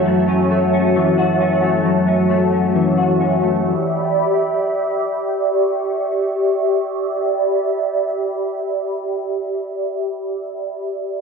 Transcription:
<<
  \new Staff \with { instrumentName = "Analog synth pad" } { \time 4/4 \key e \dorian \tempo 4 = 66 << { a''1 | b''2 cis'''2 | b''1 | } \\ { <fis' cis'' e''>1 | <g' d'' e''>1~ | <g' d'' e''>1 | } >> }
  \new Staff \with { instrumentName = "Clean electric guitar" } { \time 4/4 \key e \dorian <fis, e a cis' fis'>16 cis'16 a16 cis'16 e16 fis'16 cis'16 a16 fis,16 cis'16 a16 cis'16 e16 fis'16 cis'16 a16 | r1 | r1 | }
>>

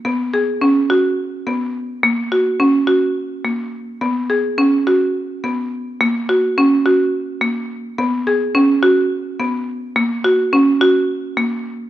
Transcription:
\new Staff \with { instrumentName = "Marimba" } { \time 7/8 \key ces \lydian \tempo 4 = 106 b8 aes'8 cis'8 fis'4 b4 | bes8 ges'8 des'8 ges'4 bes4 | b8 aes'8 cis'8 fis'4 b4 | bes8 ges'8 des'8 ges'4 bes4 |
b8 aes'8 cis'8 fis'4 b4 | bes8 ges'8 des'8 ges'4 bes4 | }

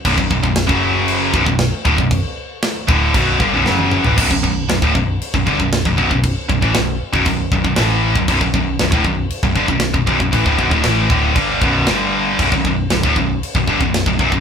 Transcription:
<<
  \new Staff \with { instrumentName = "Distorted electric guitar" } { \clef bass \time 4/4 \key b \minor \tempo 4 = 117 <b,, fis,>16 <b,, fis,>16 <b,, fis,>16 <b,, fis,>8 <fis, cis fis>4~ <fis, cis fis>16 <b,, fis,>16 <b,, fis,>8 r16 <d, a,>16 <b,, fis,>16~ | <b,, fis,>16 r4 r16 <d, a, d>8 <b,, fis, b,>8 <g, d>16 <b,, fis,>16 <fis, cis fis>8. <a, e>16 | <b,, fis,>16 <b,, fis,>16 <b,, fis,>8 <b,, fis,>16 <d, a,>16 <b,, fis,>8 r16 <b,, fis,>16 <g, d>16 <b,, fis,>8 <b,, fis,>16 <b,, fis,>16 <b,, fis,>16~ | <b,, fis,>16 r16 <b,, fis,>16 <a, e>16 <b,, fis,>8 r16 <b,, fis,>16 <b,, fis,>8 <b,, fis,>16 <b,, fis,>16 <a, e a>8. <b,, fis,>16 |
<b,, fis,>16 <b,, fis,>16 <b,, fis,>8 <b,, fis,>16 <d, a,>16 <b,, fis,>8 r16 <b,, fis,>16 <g, d>16 <b,, fis,>8 <b,, fis,>16 <b,, fis,>16 <b,, fis,>16 | <a, e>16 <d, a,>16 <b,, fis,>16 <d, a,>16 <a, e a>8 <d, a, d>8 <g, d g>8 <b,, fis, b,>8 <g, d g>4 | <b,, fis,>16 <b,, fis,>16 <b,, fis,>8 <b,, fis,>16 <d, a,>16 <b,, fis,>8 r16 <b,, fis,>16 <g, d>16 <b,, fis,>8 <b,, fis,>16 <b,, fis,>16 <b,, fis,>16 | }
  \new Staff \with { instrumentName = "Picked electric bass" } { \clef bass \time 4/4 \key b \minor b,,,16 b,,,16 b,,,16 b,,,8 fis,,4~ fis,,16 b,,,16 b,,,8 r16 d,,16 b,,,16~ | b,,,16 r4 r16 d,,8 b,,,8 g,,16 b,,,16 fis,,8. a,,16 | b,,,16 b,,,16 b,,,8 b,,,16 d,,16 b,,,8 r16 b,,,16 g,,16 b,,,8 b,,,16 b,,,16 b,,,16~ | b,,,16 r16 b,,,16 a,,16 b,,,8 r16 b,,,16 b,,,8 b,,,16 b,,,16 a,,8. b,,,16 |
b,,,16 b,,,16 b,,,8 b,,,16 d,,16 b,,,8 r16 b,,,16 g,,16 b,,,8 b,,,16 b,,,16 b,,,16 | a,,16 d,,16 b,,,16 d,,16 a,,8 d,,8 g,,8 b,,,8 g,,4 | b,,,16 b,,,16 b,,,8 b,,,16 d,,16 b,,,8 r16 b,,,16 g,,16 b,,,8 b,,,16 b,,,16 b,,,16 | }
  \new DrumStaff \with { instrumentName = "Drums" } \drummode { \time 4/4 <cymc bd>16 bd16 bd16 bd16 <cymc sn>16 bd8. cymc8 bd16 bd16 <cymc sn>8 bd16 bd16 | <cymc bd>4 <cymc sn>8 bd8 <cymc bd>8 bd8 sn16 tommh16 toml16 tomfh16 | <cymc bd>16 bd16 bd8 <cymc sn>16 bd16 bd8 cymc16 bd16 bd16 bd16 <cymc sn>16 bd16 bd16 bd16 | <cymc bd>8 bd16 bd16 <cymc sn>8. bd16 <cymc bd>8 bd16 bd16 <cymc sn>8. bd16 |
<cymc bd>16 bd16 bd8 <cymc sn>16 bd16 bd8 cymc16 bd16 bd16 bd16 <cymc sn>16 bd16 bd16 bd16 | <cymc bd>16 bd16 bd16 bd16 <cymc sn>8 bd8 <cymc bd>8 bd8 <cymc sn>4 | <cymc bd>16 bd16 bd8 <cymc sn>16 bd16 bd8 cymc16 bd16 bd16 bd16 <cymc sn>16 bd16 bd16 bd16 | }
>>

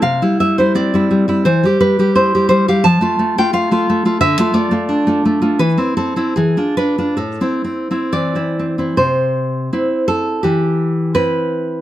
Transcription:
\new Staff \with { instrumentName = "Nylon-string guitar" } { \time 2/4 \key a \minor \tempo 4 = 84 << { f''8 e''16 c''16 d''4 | c''8 b'8 c''8 c''16 f''16 | a''8. g''16 f''4 | e''8 d''4 r8 |
b'8 a'8 gis'8 b'8 | a'4 d''4 | \key c \major c''4. a'8 | g'4 b'4 | } \\ { c16 <g e'>16 g16 <g e'>16 c'16 <g e'>16 g16 <g e'>16 | e16 <g g'>16 g16 <g g'>16 e'16 <g g'>16 g16 <g g'>16 | f16 <a f'>16 a16 <a f'>16 f'16 <a f'>16 a16 <a f'>16 | d16 <a f'>16 a16 <a f'>16 d'16 <a f'>16 a16 <a f'>16 |
e16 <c' e'>16 c'16 <c' e'>16 e16 <d' f'>16 d'16 <d' f'>16 | a,16 <c' e'>16 c'16 <c' e'>16 e16 <c' e'>16 c'16 <c' e'>16 | c4 <c' e'>4 | e4 <c' e'>4 | } >> }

